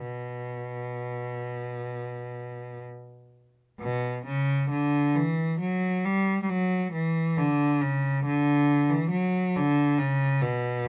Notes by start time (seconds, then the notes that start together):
0.02 B2
3.80 B2
4.26 C#3
4.70 D3
5.15 E3
5.60 F#3
6.05 G3
6.43 G3
6.50 F#3
6.93 E3
7.37 D3
7.82 C#3
8.25 D3
8.90 E3
9.10 F#3
9.56 D3
9.99 C#3
10.42 B2